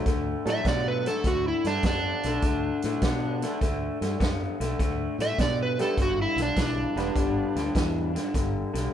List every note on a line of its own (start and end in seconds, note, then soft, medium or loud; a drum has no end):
0.06 0.34 D2 loud
0.06 0.43 D3 medium
0.06 0.43 A3 medium
0.06 kick medium
0.06 snare soft
0.06 closed hi-hat medium
0.45 0.59 A2 medium
0.45 0.64 D3 medium
0.45 1.20 F#3 medium
0.45 1.20 A3 medium
0.45 0.65 A3 medium
0.45 1.21 D4 medium
0.45 1.21 F#4 medium
0.45 1.21 A4 medium
0.45 snare soft
0.45 closed hi-hat medium
0.50 0.67 E5 loud
0.65 1.06 B2 medium
0.65 1.02 D3 medium
0.65 1.02 B3 loud
0.65 0.86 D5 medium
0.65 kick medium
0.65 snare loud
0.65 closed hi-hat medium
0.88 1.06 B4 medium
1.06 1.23 D3 medium
1.06 1.23 A3 medium
1.06 1.25 A4 medium
1.06 snare soft
1.06 closed hi-hat medium
1.24 1.52 D2 medium
1.24 1.61 D3 medium
1.24 1.61 A3 medium
1.24 1.45 F#4 medium
1.24 kick medium
1.24 snare soft
1.24 closed hi-hat medium
1.48 1.65 E4 medium
1.64 1.78 G2 medium
1.64 1.83 D3 medium
1.64 1.83 A3 medium
1.64 1.85 D4 medium
1.64 snare soft
1.64 closed hi-hat medium
1.83 2.11 F#2 medium
1.83 2.21 D3 medium
1.83 2.21 B3 medium
1.83 3.59 D4 medium
1.83 kick medium
1.83 snare loud
1.83 closed hi-hat medium
2.23 2.37 B1 medium
2.23 2.42 D3 medium
2.23 2.42 A3 medium
2.23 snare soft
2.23 closed hi-hat medium
2.42 2.70 D2 medium
2.42 2.80 D3 medium
2.42 2.81 A3 medium
2.42 kick medium
2.42 snare soft
2.42 closed hi-hat medium
2.82 2.97 A2 medium
2.82 3.01 D3 medium
2.82 3.01 A3 medium
2.82 snare soft
2.82 closed hi-hat medium
3.02 3.43 B2 medium
3.02 3.39 D3 medium
3.02 3.39 B3 medium
3.02 kick medium
3.02 snare loud
3.02 closed hi-hat medium
3.42 3.60 D3 medium
3.42 3.60 A3 medium
3.42 snare soft
3.42 closed hi-hat medium
3.61 3.89 D2 medium
3.61 3.98 D3 medium
3.61 3.98 A3 medium
3.61 kick medium
3.61 snare soft
3.61 closed hi-hat medium
4.01 4.14 G2 medium
4.01 4.19 D3 medium
4.01 4.19 A3 medium
4.01 snare soft
4.01 closed hi-hat medium
4.20 4.48 F#2 medium
4.20 4.56 D3 medium
4.20 4.56 B3 medium
4.20 kick medium
4.20 snare loud
4.20 closed hi-hat medium
4.60 4.73 B1 medium
4.60 4.78 D3 medium
4.60 4.78 A3 medium
4.60 snare soft
4.60 closed hi-hat medium
4.79 5.07 D2 loud
4.79 5.16 D3 medium
4.79 5.16 A3 medium
4.79 kick medium
4.79 snare soft
4.79 closed hi-hat medium
5.18 5.32 A2 medium
5.18 5.37 D3 medium
5.18 5.37 A3 medium
5.18 5.40 E5 loud
5.18 snare soft
5.18 closed hi-hat medium
5.38 5.79 B2 medium
5.38 5.75 D3 medium
5.38 5.75 B3 loud
5.38 5.59 D5 medium
5.38 kick medium
5.38 snare medium
5.38 closed hi-hat medium
5.63 5.80 B4 medium
5.79 5.96 D3 medium
5.79 5.96 G3 medium
5.79 5.96 A3 medium
5.79 5.96 B3 medium
5.79 5.96 D4 medium
5.79 5.97 G4 medium
5.79 5.99 A4 medium
5.79 5.97 B4 medium
5.79 snare soft
5.79 closed hi-hat medium
5.97 6.25 G1 medium
5.97 6.34 G2 medium
5.97 6.34 D3 medium
5.97 kick medium
5.97 snare soft
5.97 closed hi-hat medium
6.02 6.19 F#4 medium
6.22 6.39 E4 medium
6.36 6.50 B1 medium
6.36 6.55 G2 medium
6.36 6.55 D3 medium
6.36 snare soft
6.36 closed hi-hat medium
6.42 6.59 D4 medium
6.56 6.85 B1 medium
6.56 6.93 G2 medium
6.56 6.93 E3 medium
6.56 kick medium
6.56 snare loud
6.56 closed hi-hat medium
6.62 8.33 D4 medium
6.96 7.09 E1 medium
6.96 7.14 G2 medium
6.96 7.14 D3 medium
6.96 7.71 G3 medium
6.96 7.71 B3 medium
6.96 7.72 D4 medium
6.96 7.72 G4 medium
6.96 7.72 B4 medium
6.96 snare soft
6.96 closed hi-hat medium
7.16 7.44 G1 medium
7.16 7.52 G2 medium
7.16 7.52 D3 medium
7.16 kick medium
7.16 snare soft
7.16 closed hi-hat medium
7.55 7.69 D2 medium
7.55 7.73 G2 medium
7.55 7.74 D3 medium
7.55 snare soft
7.55 closed hi-hat medium
7.75 8.16 E2 medium
7.75 8.11 G2 medium
7.75 8.11 E3 loud
7.75 kick medium
7.75 snare medium
7.75 closed hi-hat medium
8.15 8.33 G2 medium
8.15 8.32 D3 medium
8.15 snare soft
8.15 closed hi-hat medium
8.34 8.62 G1 medium
8.34 8.70 G2 medium
8.34 8.71 D3 medium
8.34 kick medium
8.34 snare soft
8.34 closed hi-hat medium
8.74 8.87 B1 medium
8.74 8.91 G2 medium
8.74 8.91 D3 medium
8.74 snare soft
8.74 closed hi-hat medium